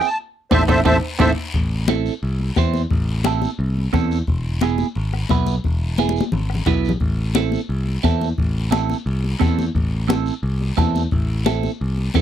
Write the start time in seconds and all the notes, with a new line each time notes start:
0.01 bombo rim, short guiro
0.07 A5
0.51 A1 C4 E4 A4 C5 E5 A5, bombo low, high conga, high timbale, long guiro
0.68 A1 C4 E4 A4 C5 E5 A5, bombo low, high conga, high timbale, long guiro
0.85 A1 C4 E4 A4 C5 E5 A5, bombo low, high conga, high timbale, long guiro
1.19 A1 C4 E4 A4 C5 E5 A5, bombo low, high conga, high timbale, long guiro
1.54 A1, bombo low, high conga, long guiro
1.88 C4 E4 A4, bombo rim, high conga, short guiro
2.06 short guiro
2.23 C2, long guiro
2.40 high conga
2.56 E2 C4 E4 C5, bombo low, bombo rim, high conga, short guiro
2.74 high conga, short guiro
2.90 A1, bombo low, high conga, long guiro
3.24 C4 E4 A4, bombo rim, high conga, short guiro
3.42 high conga, short guiro
3.59 C2, long guiro
3.77 high conga
3.93 E2 C4 E4 A4, bombo low, bombo rim, high conga, short guiro
4.11 short guiro
4.27 E1, bombo low, high conga, long guiro
4.61 B3 E4 G#4, bombo rim, high conga, short guiro
4.78 high conga, short guiro
4.95 G#1, long guiro
5.13 bombo rim, high conga
5.29 B1 B3 E4 B4, bombo low, bombo rim, high conga, short guiro
5.46 high conga, short guiro
5.64 E1, bombo low, high conga, long guiro
5.98 B3 E4 G#4, bombo rim, high conga, short guiro
6.09 high conga
6.16 short guiro
6.21 high conga
6.32 G#1, low conga, long guiro
6.50 bombo rim
6.55 low conga
6.66 B1 B3 E4 B4, bombo low, bombo rim, low conga, short guiro
6.85 short guiro
6.89 low conga
7.00 A1, bombo low, high conga, long guiro
7.35 C4 E4 A4, bombo rim, high conga, short guiro
7.52 high conga, short guiro
7.69 C2, long guiro
7.87 high conga
8.03 E2 C4 E4 A4, bombo low, bombo rim, high conga, short guiro
8.21 high conga, short guiro
8.38 A1, bombo low, high conga, long guiro
8.71 C4 E4 A4, bombo rim, high conga, short guiro
8.90 high conga, short guiro
9.06 C2, long guiro
9.24 high conga
9.39 E2 C4 E4 A4, bombo low, bombo rim, high conga, short guiro
9.59 high conga, short guiro
9.75 A1, bombo low, high conga, long guiro
10.08 C4 E4 A4, bombo rim, high conga, short guiro
10.26 short guiro
10.43 C2, long guiro
10.61 high conga
10.77 E2 C4 E4 A4, bombo low, bombo rim, high conga, short guiro
10.95 high conga, short guiro
11.11 A1, bombo low, high conga, long guiro
11.46 C4 E4 A4, bombo rim, high conga, short guiro
11.63 high conga, short guiro
11.81 C2, long guiro
11.97 high conga
12.14 E2 C4 E4 A4, bombo low, bombo rim, high conga, short guiro